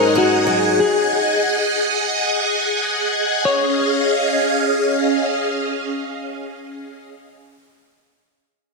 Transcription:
0, 0, Header, 1, 4, 480
1, 0, Start_track
1, 0, Key_signature, -5, "major"
1, 0, Tempo, 500000
1, 8388, End_track
2, 0, Start_track
2, 0, Title_t, "String machine"
2, 0, Program_c, 0, 50
2, 0, Note_on_c, 0, 68, 84
2, 0, Note_on_c, 0, 75, 73
2, 0, Note_on_c, 0, 78, 74
2, 0, Note_on_c, 0, 80, 97
2, 3263, Note_off_c, 0, 80, 0
2, 3264, Note_off_c, 0, 68, 0
2, 3264, Note_off_c, 0, 78, 0
2, 3265, Note_off_c, 0, 75, 0
2, 3295, Note_on_c, 0, 77, 98
2, 3298, Note_on_c, 0, 61, 82
2, 3299, Note_on_c, 0, 75, 78
2, 3300, Note_on_c, 0, 68, 81
2, 6736, Note_off_c, 0, 77, 0
2, 6737, Note_off_c, 0, 61, 0
2, 6737, Note_off_c, 0, 75, 0
2, 6738, Note_off_c, 0, 68, 0
2, 8388, End_track
3, 0, Start_track
3, 0, Title_t, "Clean electric guitar"
3, 0, Program_c, 1, 27
3, 0, Note_on_c, 1, 70, 103
3, 134, Note_off_c, 1, 70, 0
3, 170, Note_on_c, 1, 66, 91
3, 764, Note_off_c, 1, 66, 0
3, 768, Note_on_c, 1, 68, 87
3, 2603, Note_off_c, 1, 68, 0
3, 3315, Note_on_c, 1, 73, 85
3, 7417, Note_off_c, 1, 73, 0
3, 8388, End_track
4, 0, Start_track
4, 0, Title_t, "Twelve-string acoustic guitar"
4, 0, Program_c, 2, 25
4, 0, Note_on_c, 2, 44, 81
4, 0, Note_on_c, 2, 54, 63
4, 0, Note_on_c, 2, 61, 62
4, 0, Note_on_c, 2, 63, 61
4, 142, Note_off_c, 2, 61, 0
4, 145, Note_on_c, 2, 61, 69
4, 437, Note_off_c, 2, 54, 0
4, 448, Note_on_c, 2, 54, 65
4, 746, Note_off_c, 2, 44, 0
4, 807, Note_off_c, 2, 54, 0
4, 1287, Note_off_c, 2, 61, 0
4, 1287, Note_off_c, 2, 63, 0
4, 8388, End_track
0, 0, End_of_file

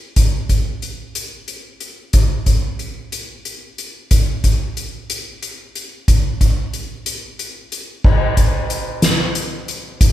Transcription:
0, 0, Header, 1, 2, 480
1, 0, Start_track
1, 0, Tempo, 656455
1, 119, Time_signature, 6, 3, 24, 8
1, 7402, End_track
2, 0, Start_track
2, 0, Title_t, "Drums"
2, 119, Note_on_c, 9, 42, 45
2, 121, Note_on_c, 9, 36, 56
2, 192, Note_off_c, 9, 42, 0
2, 194, Note_off_c, 9, 36, 0
2, 361, Note_on_c, 9, 36, 43
2, 361, Note_on_c, 9, 42, 35
2, 434, Note_off_c, 9, 36, 0
2, 434, Note_off_c, 9, 42, 0
2, 602, Note_on_c, 9, 42, 30
2, 675, Note_off_c, 9, 42, 0
2, 842, Note_on_c, 9, 42, 43
2, 915, Note_off_c, 9, 42, 0
2, 1080, Note_on_c, 9, 42, 34
2, 1154, Note_off_c, 9, 42, 0
2, 1319, Note_on_c, 9, 42, 31
2, 1392, Note_off_c, 9, 42, 0
2, 1559, Note_on_c, 9, 42, 44
2, 1562, Note_on_c, 9, 36, 62
2, 1632, Note_off_c, 9, 42, 0
2, 1635, Note_off_c, 9, 36, 0
2, 1801, Note_on_c, 9, 42, 35
2, 1802, Note_on_c, 9, 36, 46
2, 1874, Note_off_c, 9, 42, 0
2, 1875, Note_off_c, 9, 36, 0
2, 2042, Note_on_c, 9, 42, 27
2, 2115, Note_off_c, 9, 42, 0
2, 2284, Note_on_c, 9, 42, 41
2, 2357, Note_off_c, 9, 42, 0
2, 2524, Note_on_c, 9, 42, 33
2, 2598, Note_off_c, 9, 42, 0
2, 2766, Note_on_c, 9, 42, 32
2, 2839, Note_off_c, 9, 42, 0
2, 3004, Note_on_c, 9, 42, 49
2, 3005, Note_on_c, 9, 36, 59
2, 3077, Note_off_c, 9, 42, 0
2, 3079, Note_off_c, 9, 36, 0
2, 3246, Note_on_c, 9, 36, 46
2, 3246, Note_on_c, 9, 42, 40
2, 3319, Note_off_c, 9, 36, 0
2, 3319, Note_off_c, 9, 42, 0
2, 3487, Note_on_c, 9, 42, 33
2, 3560, Note_off_c, 9, 42, 0
2, 3727, Note_on_c, 9, 42, 46
2, 3800, Note_off_c, 9, 42, 0
2, 3967, Note_on_c, 9, 42, 39
2, 4040, Note_off_c, 9, 42, 0
2, 4208, Note_on_c, 9, 42, 35
2, 4281, Note_off_c, 9, 42, 0
2, 4446, Note_on_c, 9, 36, 62
2, 4447, Note_on_c, 9, 42, 48
2, 4519, Note_off_c, 9, 36, 0
2, 4520, Note_off_c, 9, 42, 0
2, 4686, Note_on_c, 9, 36, 50
2, 4687, Note_on_c, 9, 42, 41
2, 4759, Note_off_c, 9, 36, 0
2, 4760, Note_off_c, 9, 42, 0
2, 4924, Note_on_c, 9, 42, 32
2, 4998, Note_off_c, 9, 42, 0
2, 5163, Note_on_c, 9, 42, 48
2, 5236, Note_off_c, 9, 42, 0
2, 5405, Note_on_c, 9, 42, 35
2, 5479, Note_off_c, 9, 42, 0
2, 5645, Note_on_c, 9, 42, 36
2, 5718, Note_off_c, 9, 42, 0
2, 5882, Note_on_c, 9, 36, 78
2, 5882, Note_on_c, 9, 49, 68
2, 5955, Note_off_c, 9, 36, 0
2, 5955, Note_off_c, 9, 49, 0
2, 6121, Note_on_c, 9, 42, 46
2, 6122, Note_on_c, 9, 36, 57
2, 6194, Note_off_c, 9, 42, 0
2, 6195, Note_off_c, 9, 36, 0
2, 6362, Note_on_c, 9, 42, 39
2, 6435, Note_off_c, 9, 42, 0
2, 6598, Note_on_c, 9, 38, 75
2, 6598, Note_on_c, 9, 42, 56
2, 6671, Note_off_c, 9, 38, 0
2, 6671, Note_off_c, 9, 42, 0
2, 6838, Note_on_c, 9, 42, 47
2, 6911, Note_off_c, 9, 42, 0
2, 7080, Note_on_c, 9, 42, 44
2, 7153, Note_off_c, 9, 42, 0
2, 7318, Note_on_c, 9, 36, 82
2, 7318, Note_on_c, 9, 42, 64
2, 7391, Note_off_c, 9, 36, 0
2, 7391, Note_off_c, 9, 42, 0
2, 7402, End_track
0, 0, End_of_file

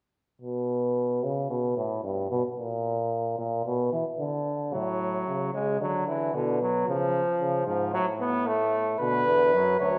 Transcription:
0, 0, Header, 1, 4, 480
1, 0, Start_track
1, 0, Key_signature, 2, "minor"
1, 0, Tempo, 539084
1, 377, Time_signature, 4, 2, 24, 8
1, 5172, Tempo, 532387
1, 8938, End_track
2, 0, Start_track
2, 0, Title_t, "Flugelhorn"
2, 0, Program_c, 0, 56
2, 8049, Note_on_c, 0, 71, 102
2, 8732, Note_off_c, 0, 71, 0
2, 8767, Note_on_c, 0, 73, 79
2, 8938, Note_off_c, 0, 73, 0
2, 8938, End_track
3, 0, Start_track
3, 0, Title_t, "Trombone"
3, 0, Program_c, 1, 57
3, 4212, Note_on_c, 1, 54, 77
3, 4895, Note_off_c, 1, 54, 0
3, 4935, Note_on_c, 1, 56, 73
3, 5168, Note_off_c, 1, 56, 0
3, 5175, Note_on_c, 1, 54, 76
3, 5407, Note_off_c, 1, 54, 0
3, 5413, Note_on_c, 1, 52, 72
3, 5654, Note_on_c, 1, 50, 67
3, 5668, Note_off_c, 1, 52, 0
3, 5896, Note_off_c, 1, 50, 0
3, 5901, Note_on_c, 1, 54, 70
3, 6135, Note_off_c, 1, 54, 0
3, 6144, Note_on_c, 1, 53, 77
3, 6842, Note_off_c, 1, 53, 0
3, 6854, Note_on_c, 1, 53, 66
3, 7087, Note_off_c, 1, 53, 0
3, 7091, Note_on_c, 1, 54, 88
3, 7199, Note_off_c, 1, 54, 0
3, 7330, Note_on_c, 1, 59, 84
3, 7571, Note_on_c, 1, 57, 90
3, 7584, Note_off_c, 1, 59, 0
3, 8043, Note_off_c, 1, 57, 0
3, 8048, Note_on_c, 1, 50, 66
3, 8537, Note_on_c, 1, 54, 65
3, 8551, Note_off_c, 1, 50, 0
3, 8768, Note_off_c, 1, 54, 0
3, 8773, Note_on_c, 1, 54, 64
3, 8938, Note_off_c, 1, 54, 0
3, 8938, End_track
4, 0, Start_track
4, 0, Title_t, "Euphonium"
4, 0, Program_c, 2, 58
4, 372, Note_on_c, 2, 47, 76
4, 1100, Note_on_c, 2, 49, 70
4, 1113, Note_off_c, 2, 47, 0
4, 1332, Note_off_c, 2, 49, 0
4, 1338, Note_on_c, 2, 47, 69
4, 1570, Note_off_c, 2, 47, 0
4, 1575, Note_on_c, 2, 45, 66
4, 1807, Note_off_c, 2, 45, 0
4, 1812, Note_on_c, 2, 43, 68
4, 2051, Note_off_c, 2, 43, 0
4, 2055, Note_on_c, 2, 47, 75
4, 2164, Note_off_c, 2, 47, 0
4, 2300, Note_on_c, 2, 46, 76
4, 3004, Note_off_c, 2, 46, 0
4, 3014, Note_on_c, 2, 46, 75
4, 3249, Note_off_c, 2, 46, 0
4, 3254, Note_on_c, 2, 47, 75
4, 3490, Note_off_c, 2, 47, 0
4, 3495, Note_on_c, 2, 52, 67
4, 3604, Note_off_c, 2, 52, 0
4, 3734, Note_on_c, 2, 50, 78
4, 4215, Note_on_c, 2, 45, 66
4, 4228, Note_off_c, 2, 50, 0
4, 4689, Note_off_c, 2, 45, 0
4, 4695, Note_on_c, 2, 49, 58
4, 4922, Note_off_c, 2, 49, 0
4, 4928, Note_on_c, 2, 49, 61
4, 5162, Note_off_c, 2, 49, 0
4, 5167, Note_on_c, 2, 50, 66
4, 5643, Note_off_c, 2, 50, 0
4, 5652, Note_on_c, 2, 47, 66
4, 6127, Note_off_c, 2, 47, 0
4, 6134, Note_on_c, 2, 49, 64
4, 6440, Note_off_c, 2, 49, 0
4, 6613, Note_on_c, 2, 49, 64
4, 6835, Note_off_c, 2, 49, 0
4, 6848, Note_on_c, 2, 44, 69
4, 7088, Note_on_c, 2, 45, 63
4, 7101, Note_off_c, 2, 44, 0
4, 8040, Note_off_c, 2, 45, 0
4, 8046, Note_on_c, 2, 47, 75
4, 8283, Note_off_c, 2, 47, 0
4, 8290, Note_on_c, 2, 40, 65
4, 8533, Note_on_c, 2, 42, 71
4, 8546, Note_off_c, 2, 40, 0
4, 8763, Note_off_c, 2, 42, 0
4, 8769, Note_on_c, 2, 38, 74
4, 8938, Note_off_c, 2, 38, 0
4, 8938, End_track
0, 0, End_of_file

